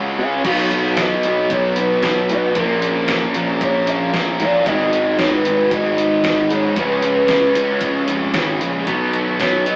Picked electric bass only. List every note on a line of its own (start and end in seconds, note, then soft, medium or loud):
0.00 0.20 C#2 loud
0.19 0.41 C#3 medium
0.45 1.13 B1 loud
1.25 2.32 B1 loud
2.30 2.53 B2 medium
2.56 3.24 A#1 loud
3.35 4.42 A#1 loud
4.40 4.63 A#2 medium
4.67 5.35 G#1 loud
5.47 6.53 G#1 loud
6.51 6.74 G#2 medium
6.77 7.45 C#2 loud
7.56 8.07 C#2 loud
8.08 8.32 F1 medium
8.34 8.58 G#1 medium
8.62 8.85 A#1 medium
8.87 9.76 B1 medium